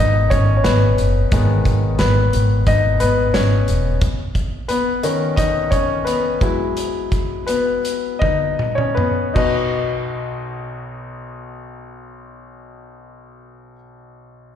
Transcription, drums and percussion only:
0.31 kick medium
0.31 closed hi-hat medium
0.64 snare medium
0.64 closed hi-hat medium
0.98 closed hi-hat medium
1.32 kick loud
1.32 closed hi-hat medium
1.65 kick medium
1.65 closed hi-hat medium
1.99 snare loud
1.99 closed hi-hat medium
2.33 closed hi-hat medium
2.67 kick medium
2.67 closed hi-hat medium
3.00 closed hi-hat medium
3.34 snare medium
3.34 closed hi-hat medium
3.68 closed hi-hat medium
4.01 kick loud
4.01 closed hi-hat medium
4.35 kick medium
4.35 closed hi-hat soft
4.69 closed hi-hat medium
5.03 closed hi-hat medium
5.37 kick medium
5.37 closed hi-hat medium
5.72 kick medium
5.72 closed hi-hat medium
6.07 closed hi-hat medium
6.41 kick medium
6.41 closed hi-hat soft
6.77 closed hi-hat medium
7.12 kick medium
7.12 closed hi-hat soft
7.48 closed hi-hat medium
7.85 closed hi-hat medium
8.22 kick medium
8.22 high tom soft
8.59 mid tom medium
8.78 mid tom soft
8.97 mid tom medium
9.36 kick medium
9.36 crash medium

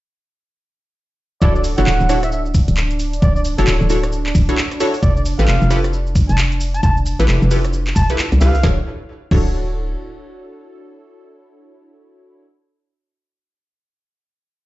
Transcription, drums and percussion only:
1.42 kick loud
1.42 shaker soft
1.55 shaker soft
1.64 open hi-hat loud
1.64 shaker medium
1.78 closed hi-hat medium
1.78 shaker soft
1.87 clap loud
1.87 shaker soft
2.00 shaker soft
2.09 cross-stick medium
2.09 open hi-hat loud
2.09 shaker medium
2.23 cross-stick medium
2.23 closed hi-hat medium
2.23 shaker soft
2.32 shaker soft
2.46 shaker soft
2.54 kick loud
2.54 open hi-hat loud
2.54 shaker medium
2.68 closed hi-hat medium
2.68 shaker soft
2.77 clap loud
2.77 shaker soft
2.91 closed hi-hat medium
2.91 shaker soft
3.00 open hi-hat loud
3.00 shaker medium
3.13 closed hi-hat medium
3.13 shaker soft
3.22 kick loud
3.22 shaker soft
3.36 shaker soft
3.45 open hi-hat loud
3.45 shaker medium
3.58 closed hi-hat medium
3.58 shaker soft
3.67 clap loud
3.67 shaker soft
3.81 shaker soft
3.90 open hi-hat loud
3.90 shaker medium
4.03 cross-stick medium
4.03 closed hi-hat medium
4.03 shaker soft
4.12 shaker soft
4.26 clap medium
4.26 shaker soft
4.35 kick loud
4.35 open hi-hat loud
4.35 shaker medium
4.49 closed hi-hat medium
4.49 shaker soft
4.58 clap loud
4.58 shaker soft
4.72 cross-stick soft
4.72 closed hi-hat medium
4.72 shaker soft
4.80 open hi-hat loud
4.80 shaker medium
4.94 open hi-hat medium
4.94 shaker soft
5.03 kick loud
5.03 shaker soft
5.17 shaker soft
5.26 open hi-hat loud
5.26 shaker medium
5.39 closed hi-hat medium
5.39 shaker soft
5.48 clap loud
5.48 shaker soft
5.62 shaker soft
5.71 cross-stick medium
5.71 open hi-hat loud
5.71 shaker medium
5.84 cross-stick medium
5.84 closed hi-hat medium
5.84 shaker soft
5.93 shaker soft
6.07 shaker soft
6.16 kick loud
6.16 open hi-hat loud
6.16 shaker medium
6.29 closed hi-hat medium
6.29 shaker soft
6.38 clap loud
6.38 shaker soft
6.52 closed hi-hat soft
6.52 shaker soft
6.61 open hi-hat loud
6.61 shaker medium
6.75 closed hi-hat medium
6.75 shaker soft
6.83 kick loud
6.83 shaker soft
6.97 shaker soft
7.06 open hi-hat loud
7.06 shaker medium
7.20 closed hi-hat medium
7.20 shaker soft
7.28 clap loud
7.28 shaker soft
7.42 shaker soft
7.51 open hi-hat loud
7.51 shaker medium
7.65 cross-stick medium
7.65 closed hi-hat medium
7.65 shaker soft
7.73 shaker soft
7.87 clap medium
7.87 shaker soft
7.96 kick loud
7.96 open hi-hat loud
7.96 shaker medium
8.10 closed hi-hat medium
8.10 shaker soft
8.19 clap loud
8.19 shaker soft
8.32 cross-stick soft
8.32 closed hi-hat medium
8.32 shaker soft
8.41 open hi-hat loud
8.41 shaker medium
8.55 open hi-hat medium
8.55 shaker soft
8.63 kick loud
8.63 snare medium
9.31 kick loud
9.31 crash medium

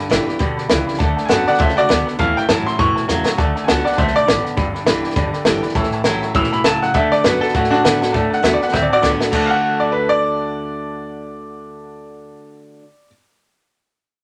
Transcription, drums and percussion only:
0.11 snare loud
0.11 hi-hat pedal loud
0.29 snare soft
0.40 kick loud
0.40 snare soft
0.58 snare soft
0.70 snare loud
0.70 hi-hat pedal medium
0.88 snare soft
0.93 snare soft
1.00 kick loud
1.00 snare soft
1.18 snare soft
1.30 snare loud
1.30 hi-hat pedal loud
1.47 snare soft
1.53 snare soft
1.60 kick loud
1.60 snare soft
1.69 snare soft
1.77 snare soft
1.90 snare loud
1.90 hi-hat pedal medium
2.07 snare soft
2.19 kick loud
2.19 snare soft
2.37 snare soft
2.49 snare loud
2.49 hi-hat pedal medium
2.67 snare soft
2.79 kick loud
2.79 snare soft
2.96 snare soft
3.09 snare medium
3.09 hi-hat pedal medium
3.26 snare medium
3.38 kick loud
3.38 snare soft
3.56 snare soft
3.68 snare loud
3.68 hi-hat pedal medium
3.86 snare soft
3.92 snare soft
3.98 kick loud
3.98 snare soft
4.07 snare soft
4.16 snare soft
4.28 snare loud
4.28 hi-hat pedal medium
4.45 snare soft
4.57 kick loud
4.57 snare soft
4.75 snare soft
4.87 snare loud
4.87 hi-hat pedal medium
5.04 snare soft
5.10 snare soft
5.16 kick loud
5.16 snare soft
5.33 snare soft
5.45 snare loud
5.45 hi-hat pedal medium
5.62 snare soft
5.69 snare soft
5.74 kick loud
5.74 snare soft
5.83 snare soft
5.91 snare soft
6.04 snare loud
6.04 hi-hat pedal medium
6.22 snare soft
6.34 kick loud
6.34 snare soft
6.43 snare soft
6.52 snare soft
6.64 snare loud
6.64 hi-hat pedal medium
6.82 snare soft
6.94 kick loud
6.94 snare soft
7.12 snare soft
7.24 snare loud
7.24 hi-hat pedal medium
7.42 snare soft
7.48 snare soft
7.54 kick loud
7.54 snare soft
7.64 snare soft
7.73 snare soft
7.85 snare loud
7.85 hi-hat pedal medium
8.02 snare medium
8.14 kick loud
8.14 snare soft
8.32 snare soft
8.44 snare loud
8.44 hi-hat pedal medium
8.62 snare soft
8.68 snare soft
8.74 kick loud
8.74 snare medium
9.03 snare medium
9.03 hi-hat pedal medium
9.20 snare medium
9.33 kick loud
9.33 crash medium

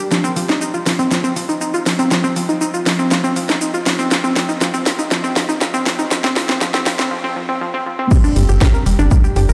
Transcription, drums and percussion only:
0.11 snare soft
0.11 shaker medium
0.24 shaker soft
0.36 open hi-hat loud
0.36 shaker medium
0.49 snare soft
0.49 shaker soft
0.61 shaker medium
0.74 shaker soft
0.86 snare medium
0.86 open hi-hat loud
0.86 shaker medium
0.99 shaker soft
1.11 snare medium
1.11 shaker medium
1.24 shaker soft
1.36 open hi-hat loud
1.36 shaker medium
1.49 shaker soft
1.61 shaker medium
1.74 shaker soft
1.86 snare medium
1.86 open hi-hat medium
1.86 shaker soft
1.99 shaker soft
2.11 snare medium
2.11 shaker medium
2.24 shaker soft
2.36 open hi-hat loud
2.36 shaker medium
2.49 shaker soft
2.61 shaker medium
2.74 shaker soft
2.86 snare medium
2.86 open hi-hat loud
2.86 shaker medium
2.99 shaker soft
3.11 snare medium
3.11 shaker medium
3.24 shaker soft
3.36 open hi-hat loud
3.36 shaker medium
3.49 snare medium
3.49 shaker soft
3.61 shaker medium
3.74 shaker soft
3.86 snare medium
3.86 open hi-hat loud
3.86 shaker medium
3.99 shaker soft
4.11 snare medium
4.11 shaker medium
4.24 shaker soft
4.36 snare medium
4.36 open hi-hat loud
4.36 shaker medium
4.49 shaker soft
4.61 snare medium
4.61 shaker medium
4.74 shaker soft
4.86 snare medium
4.86 open hi-hat loud
4.86 shaker medium
4.99 shaker soft
5.11 snare medium
5.11 shaker medium
5.24 shaker soft
5.36 snare medium
5.36 open hi-hat loud
5.36 shaker medium
5.49 shaker soft
5.61 snare medium
5.61 shaker medium
5.74 shaker soft
5.86 snare medium
5.86 open hi-hat medium
5.86 shaker medium
5.99 shaker soft
6.11 snare medium
6.11 shaker medium
6.24 snare medium
6.24 shaker soft
6.36 snare loud
6.36 open hi-hat loud
6.36 shaker medium
6.49 snare medium
6.49 shaker soft
6.61 snare medium
6.61 shaker medium
6.74 snare medium
6.74 shaker soft
6.86 snare loud
6.86 open hi-hat loud
6.86 shaker medium
6.99 snare medium
6.99 shaker soft
8.11 kick loud
8.11 crash loud
8.11 shaker medium
8.24 shaker soft
8.36 open hi-hat loud
8.36 shaker medium
8.49 shaker soft
8.61 kick loud
8.61 snare loud
8.61 shaker medium
8.74 shaker soft
8.86 open hi-hat loud
8.86 shaker medium
8.99 shaker soft
9.11 kick loud
9.11 shaker medium
9.24 shaker soft
9.36 open hi-hat loud
9.36 shaker medium
9.49 shaker soft

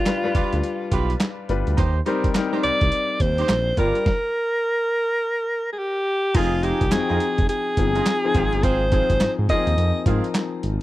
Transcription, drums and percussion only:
0.06 snare loud
0.06 clap medium
0.06 closed hi-hat medium
0.35 kick loud
0.35 closed hi-hat medium
0.53 closed hi-hat soft
0.64 closed hi-hat medium
0.92 kick medium
0.92 closed hi-hat medium
1.10 closed hi-hat medium
1.20 snare loud
1.20 clap loud
1.20 clap medium
1.20 closed hi-hat medium
1.49 closed hi-hat medium
1.67 closed hi-hat soft
1.78 kick loud
1.78 closed hi-hat medium
2.06 closed hi-hat medium
2.24 kick medium
2.24 closed hi-hat medium
2.35 snare loud
2.35 clap medium
2.35 clap loud
2.35 closed hi-hat medium
2.63 closed hi-hat medium
2.81 kick medium
2.81 closed hi-hat soft
2.92 closed hi-hat medium
3.20 kick medium
3.20 closed hi-hat medium
3.38 closed hi-hat medium
3.49 snare loud
3.49 clap loud
3.49 clap medium
3.49 closed hi-hat medium
3.77 kick medium
3.77 closed hi-hat medium
3.95 closed hi-hat soft
4.06 kick loud
4.06 snare medium
6.35 kick loud
6.35 closed hi-hat medium
6.35 crash medium
6.63 closed hi-hat medium
6.81 kick loud
6.81 closed hi-hat medium
6.92 snare loud
6.92 clap loud
6.92 clap medium
6.92 closed hi-hat medium
7.20 closed hi-hat medium
7.38 kick medium
7.38 closed hi-hat soft
7.49 closed hi-hat medium
7.77 kick medium
7.77 closed hi-hat medium
7.95 closed hi-hat medium
8.06 snare loud
8.06 clap medium
8.06 clap loud
8.06 closed hi-hat medium
8.34 kick medium
8.34 closed hi-hat medium
8.53 closed hi-hat soft
8.63 kick loud
8.63 closed hi-hat medium
8.92 kick loud
8.92 closed hi-hat medium
9.10 kick loud
9.10 closed hi-hat medium
9.20 snare loud
9.20 clap medium
9.20 closed hi-hat medium
9.49 kick loud
9.49 closed hi-hat medium
9.67 closed hi-hat medium
9.78 closed hi-hat medium
10.06 kick medium
10.06 closed hi-hat medium
10.24 closed hi-hat medium
10.35 snare loud
10.35 clap loud
10.35 clap medium
10.35 closed hi-hat medium
10.63 closed hi-hat medium

